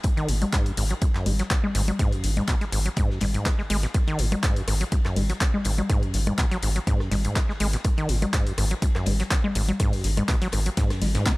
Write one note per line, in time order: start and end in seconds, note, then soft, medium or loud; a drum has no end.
0.03 0.08 G#2 medium
0.03 kick loud
0.03 closed hi-hat medium
0.03 ride medium
0.17 0.30 D#3 loud
0.17 closed hi-hat soft
0.28 0.44 G#1 loud
0.28 0.36 G#2 medium
0.28 open hi-hat loud
0.28 ride medium
0.42 0.45 F#3 medium
0.42 closed hi-hat medium
0.42 low conga medium
0.53 0.68 G#2 medium
0.53 kick loud
0.53 snare loud
0.53 clap loud
0.53 closed hi-hat medium
0.53 ride medium
0.66 0.72 F#2 loud
0.66 closed hi-hat soft
0.66 ride soft
0.77 0.93 G#1 medium
0.77 0.85 G#2 medium
0.77 open hi-hat loud
0.77 ride medium
0.89 0.94 F#3 medium
0.89 closed hi-hat soft
0.89 ride soft
1.01 1.06 F#2 medium
1.01 kick loud
1.01 closed hi-hat medium
1.01 ride medium
1.15 1.28 F#2 medium
1.15 snare soft
1.15 clap soft
1.26 1.42 G#1 medium
1.26 1.33 G#2 medium
1.26 open hi-hat loud
1.26 ride medium
1.26 low conga medium
1.39 1.43 F#3 medium
1.39 snare soft
1.39 closed hi-hat soft
1.50 1.55 C#3 medium
1.50 kick loud
1.50 snare loud
1.50 clap loud
1.50 closed hi-hat medium
1.50 ride medium
1.64 1.67 G#3 medium
1.64 low conga medium
1.75 1.91 G#1 loud
1.75 1.82 G#2 medium
1.75 open hi-hat loud
1.75 ride medium
1.88 1.92 F#3 medium
1.88 closed hi-hat soft
1.88 low conga medium
1.99 2.14 G#2 loud
1.99 kick loud
1.99 closed hi-hat medium
1.99 ride medium
2.12 2.25 F#2 medium
2.12 closed hi-hat soft
2.24 2.39 G#1 loud
2.24 2.31 G#2 medium
2.24 snare soft
2.24 open hi-hat loud
2.24 ride medium
2.37 2.43 G#2 medium
2.37 closed hi-hat soft
2.37 low conga medium
2.47 2.55 B2 loud
2.47 kick loud
2.47 snare loud
2.47 clap loud
2.47 closed hi-hat medium
2.47 ride medium
2.61 2.65 G#3 medium
2.61 snare soft
2.61 closed hi-hat soft
2.72 2.88 G#1 loud
2.72 2.80 G#2 medium
2.72 open hi-hat loud
2.72 ride medium
2.86 2.89 F#3 medium
2.86 closed hi-hat soft
2.97 3.11 G#2 loud
2.97 kick loud
2.97 closed hi-hat medium
2.97 ride medium
3.10 3.19 F#2 medium
3.10 snare soft
3.21 3.37 G#1 medium
3.21 3.26 G#2 loud
3.21 snare soft
3.21 open hi-hat loud
3.21 ride medium
3.21 low conga loud
3.34 3.47 G#2 medium
3.34 closed hi-hat soft
3.46 3.50 A2 medium
3.46 kick loud
3.46 snare loud
3.46 clap loud
3.46 closed hi-hat medium
3.58 3.62 G#3 medium
3.58 snare soft
3.70 3.86 G#1 loud
3.70 3.77 G#3 loud
3.70 open hi-hat loud
3.70 ride medium
3.83 3.87 B2 medium
3.83 snare soft
3.83 closed hi-hat soft
3.94 3.99 G#2 medium
3.94 kick loud
3.94 cross-stick medium
3.94 closed hi-hat medium
3.94 ride medium
4.07 4.20 D#3 loud
4.07 closed hi-hat soft
4.19 4.35 G#1 loud
4.19 4.26 G#2 medium
4.19 open hi-hat loud
4.19 ride medium
4.32 4.36 F#3 medium
4.32 cross-stick soft
4.32 closed hi-hat medium
4.32 low conga medium
4.43 4.58 G#2 medium
4.43 kick loud
4.43 snare loud
4.43 clap loud
4.43 closed hi-hat medium
4.43 ride medium
4.56 4.63 F#2 loud
4.56 closed hi-hat soft
4.56 ride soft
4.68 4.83 G#1 medium
4.68 4.75 G#2 medium
4.68 cross-stick medium
4.68 open hi-hat loud
4.68 ride medium
4.80 4.84 F#3 medium
4.80 closed hi-hat soft
4.80 ride soft
4.92 4.96 F#2 medium
4.92 kick loud
4.92 closed hi-hat medium
4.92 ride medium
5.05 5.18 F#2 medium
5.05 cross-stick soft
5.05 snare soft
5.05 clap soft
5.16 5.32 G#1 medium
5.16 5.24 G#2 medium
5.16 open hi-hat loud
5.16 ride medium
5.16 low conga medium
5.29 5.33 F#3 medium
5.29 snare soft
5.29 closed hi-hat soft
5.41 5.45 C#3 medium
5.41 kick loud
5.41 cross-stick medium
5.41 snare loud
5.41 clap loud
5.41 closed hi-hat medium
5.54 5.58 G#3 medium
5.54 low conga medium
5.64 5.81 G#1 loud
5.64 5.72 G#2 medium
5.64 open hi-hat loud
5.64 ride medium
5.78 5.82 F#3 medium
5.78 closed hi-hat medium
5.78 low conga loud
5.90 6.04 G#2 loud
5.90 kick loud
5.90 cross-stick medium
5.90 closed hi-hat medium
5.90 ride medium
6.03 6.15 F#2 medium
6.03 closed hi-hat soft
6.14 6.30 G#1 loud
6.14 6.21 G#2 medium
6.14 snare soft
6.14 open hi-hat loud
6.14 ride medium
6.27 6.33 G#2 medium
6.27 cross-stick soft
6.27 closed hi-hat soft
6.27 low conga loud
6.38 6.46 B2 loud
6.38 kick loud
6.38 snare loud
6.38 clap loud
6.38 closed hi-hat medium
6.38 ride medium
6.51 6.58 F#3 loud
6.51 snare soft
6.51 closed hi-hat soft
6.62 6.78 G#1 medium
6.62 6.70 G#2 medium
6.62 open hi-hat loud
6.62 ride medium
6.76 6.80 F#3 medium
6.76 closed hi-hat medium
6.87 7.02 G#2 loud
6.87 kick loud
6.87 closed hi-hat medium
6.87 ride medium
7.00 7.10 F#2 medium
7.00 cross-stick soft
7.00 snare soft
7.11 7.27 G#1 medium
7.11 7.16 G#2 loud
7.11 snare medium
7.11 open hi-hat loud
7.11 ride medium
7.11 low conga medium
7.25 7.37 G#2 medium
7.25 closed hi-hat medium
7.35 7.40 A2 medium
7.35 kick loud
7.35 cross-stick medium
7.35 snare loud
7.35 clap loud
7.35 closed hi-hat medium
7.35 ride medium
7.49 7.53 G#3 medium
7.49 snare soft
7.60 7.76 G#1 loud
7.60 7.67 G#3 loud
7.60 open hi-hat loud
7.60 ride medium
7.73 7.77 B2 medium
7.73 snare soft
7.73 closed hi-hat medium
7.84 7.89 G#2 medium
7.84 kick loud
7.84 cross-stick medium
7.84 closed hi-hat medium
7.84 ride medium
7.98 8.11 D#3 loud
7.98 closed hi-hat soft
8.09 8.25 G#1 loud
8.09 8.16 G#2 medium
8.09 open hi-hat loud
8.09 ride medium
8.22 8.26 F#3 medium
8.22 cross-stick soft
8.22 closed hi-hat medium
8.22 low conga medium
8.33 8.48 G#2 medium
8.33 kick loud
8.33 snare loud
8.33 clap loud
8.33 closed hi-hat medium
8.46 8.53 F#2 loud
8.46 closed hi-hat soft
8.46 ride soft
8.58 8.74 G#1 medium
8.58 8.65 G#2 medium
8.58 cross-stick medium
8.58 open hi-hat loud
8.58 ride medium
8.71 8.75 F#3 medium
8.71 closed hi-hat medium
8.71 ride soft
8.82 8.87 F#2 medium
8.82 kick loud
8.82 closed hi-hat medium
8.82 ride medium
8.95 9.08 F#2 medium
8.95 cross-stick soft
8.95 snare soft
8.95 clap soft
9.06 9.22 G#1 medium
9.06 9.14 G#2 medium
9.06 open hi-hat loud
9.06 ride medium
9.06 low conga medium
9.20 9.23 F#3 medium
9.20 snare soft
9.20 closed hi-hat medium
9.30 9.35 C#3 medium
9.30 kick loud
9.30 cross-stick medium
9.30 snare loud
9.30 clap loud
9.30 closed hi-hat medium
9.30 ride medium
9.44 9.48 G#3 medium
9.44 low conga medium
9.55 9.71 G#1 loud
9.55 9.63 G#2 medium
9.55 open hi-hat loud
9.55 ride medium
9.68 9.72 F#3 medium
9.68 closed hi-hat medium
9.68 low conga medium
9.79 9.94 G#2 loud
9.79 kick loud
9.79 cross-stick medium
9.79 closed hi-hat medium
9.79 ride medium
9.93 10.06 F#2 medium
9.93 open hi-hat medium
10.04 10.20 G#1 loud
10.04 10.11 G#2 medium
10.04 snare soft
10.04 open hi-hat loud
10.04 ride medium
10.17 10.23 G#2 medium
10.17 cross-stick soft
10.17 closed hi-hat medium
10.17 low conga medium
10.28 10.36 B2 loud
10.28 kick loud
10.28 snare loud
10.28 clap loud
10.28 closed hi-hat medium
10.28 ride medium
10.42 10.48 F#3 loud
10.42 snare soft
10.42 closed hi-hat soft
10.52 10.69 G#1 loud
10.52 10.60 G#2 medium
10.52 cross-stick medium
10.52 open hi-hat loud
10.52 ride medium
10.66 10.70 F#3 medium
10.66 closed hi-hat medium
10.77 10.92 G#2 loud
10.77 kick loud
10.77 snare loud
10.77 closed hi-hat medium
10.77 ride medium
10.90 11.03 F#2 medium
10.90 cross-stick soft
10.90 snare loud
10.90 closed hi-hat soft
10.90 ride medium
11.02 11.17 G#1 medium
11.02 11.09 G#3 loud
11.02 snare loud
11.02 open hi-hat loud
11.02 ride medium
11.02 low conga medium
11.15 11.28 G#2 loud
11.15 snare loud
11.15 closed hi-hat medium
11.15 ride medium
11.26 11.33 C#3 loud
11.26 kick loud
11.26 snare medium
11.26 snare loud
11.26 clap loud
11.26 closed hi-hat medium